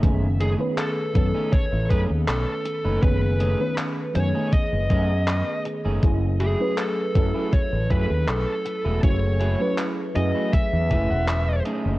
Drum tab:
HH |xxxxxxxx|xxxxxxxx|xxxxxxxx|xxxxxxxx|
CP |--x---x-|--x---x-|--x---x-|--x---x-|
BD |o--ooo--|o---oo--|o--ooo--|o---oo--|